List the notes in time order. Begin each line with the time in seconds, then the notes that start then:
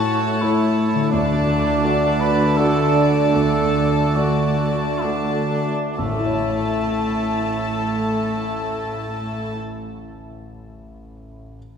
Already playing: A2 A3 E4 F#4 C#5 A5
0.41 A3 E4 C#5
0.95 D3
0.99 F#4
1.04 A4
1.08 D3 A3 D4 F#4 D5
1.12 D2 D5 A5
1.84 A3 F#4 D5
2.20 B4
2.57 A3 F#4 A4 D5
3.35 D2 A4
4.15 A3 F#4 D5
5.03 A3 D4 F#4 D5
5.97 A1 A2 A3 E4 A4 A5
6.05 A2 A3
6.12 A3 E4
6.19 E4 A4
6.26 C#5
6.33 E5 A5